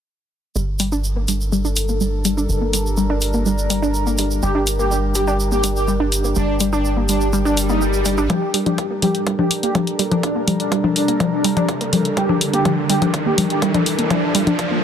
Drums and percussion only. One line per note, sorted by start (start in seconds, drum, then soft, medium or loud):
0.56 shaker soft
0.79 open hi-hat medium
0.79 shaker medium
0.92 shaker soft
1.04 shaker soft
1.28 open hi-hat loud
1.28 shaker medium
1.41 shaker soft
1.53 shaker soft
1.65 shaker soft
1.76 open hi-hat medium
1.76 shaker medium
1.88 shaker soft
2.01 shaker soft
2.25 open hi-hat loud
2.25 shaker medium
2.38 shaker soft
2.50 shaker soft
2.73 open hi-hat loud
2.73 shaker medium
2.86 shaker soft
2.97 shaker soft
3.21 open hi-hat medium
3.21 shaker medium
3.33 shaker soft
3.46 shaker soft
3.58 shaker soft
3.70 open hi-hat loud
3.70 shaker medium
3.83 shaker soft
3.94 shaker soft
4.07 shaker soft
4.18 open hi-hat loud
4.18 shaker medium
4.31 shaker soft
4.43 shaker soft
4.67 open hi-hat loud
4.67 shaker medium
4.79 shaker soft
4.91 shaker soft
5.15 open hi-hat loud
5.15 shaker loud
5.27 shaker soft
5.40 shaker soft
5.52 shaker soft
5.64 open hi-hat loud
5.64 shaker medium
5.76 shaker soft
5.88 shaker soft
6.12 open hi-hat loud
6.12 shaker medium
6.24 shaker soft
6.35 shaker soft
6.60 open hi-hat loud
6.60 shaker medium
6.73 shaker soft
6.85 shaker soft
7.09 open hi-hat loud
7.09 shaker medium
7.21 shaker soft
7.33 shaker soft
7.46 shaker soft
7.57 open hi-hat loud
7.57 shaker medium
7.69 shaker soft
7.81 shaker soft
7.93 shaker soft
8.05 open hi-hat loud
8.05 shaker medium
8.17 shaker soft
8.30 kick loud
8.30 closed hi-hat soft
8.30 low conga medium
8.54 open hi-hat loud
8.66 closed hi-hat soft
8.66 low conga medium
8.78 kick loud
8.78 closed hi-hat soft
9.02 open hi-hat loud
9.02 low conga medium
9.15 closed hi-hat soft
9.27 kick loud
9.27 closed hi-hat soft
9.39 low conga medium
9.51 open hi-hat loud
9.63 closed hi-hat soft
9.75 kick loud
9.75 closed hi-hat soft
9.75 low conga medium
9.87 closed hi-hat soft
9.99 open hi-hat loud
10.12 closed hi-hat soft
10.12 low conga medium
10.23 kick loud
10.23 closed hi-hat soft
10.48 open hi-hat loud
10.48 low conga medium
10.60 closed hi-hat soft
10.72 kick loud
10.72 closed hi-hat soft
10.84 low conga medium
10.96 open hi-hat loud
11.08 closed hi-hat soft
11.20 kick loud
11.20 closed hi-hat soft
11.20 low conga medium
11.44 open hi-hat loud
11.57 closed hi-hat soft
11.57 low conga medium
11.69 kick loud
11.69 closed hi-hat soft
11.81 closed hi-hat soft
11.93 open hi-hat loud
11.93 low conga medium
12.05 closed hi-hat soft
12.17 kick loud
12.17 closed hi-hat soft
12.29 low conga medium
12.41 open hi-hat loud
12.53 closed hi-hat soft
12.65 kick loud
12.65 closed hi-hat soft
12.65 low conga medium
12.90 open hi-hat loud
13.02 closed hi-hat soft
13.02 low conga medium
13.14 kick loud
13.14 closed hi-hat soft
13.38 open hi-hat loud
13.38 low conga medium
13.50 closed hi-hat soft
13.62 kick loud
13.62 closed hi-hat soft
13.74 closed hi-hat soft
13.74 low conga medium
13.86 open hi-hat loud
13.99 closed hi-hat soft
14.10 kick loud
14.10 closed hi-hat soft
14.10 low conga medium
14.35 open hi-hat loud
14.47 closed hi-hat soft
14.47 low conga medium
14.59 kick loud
14.59 closed hi-hat soft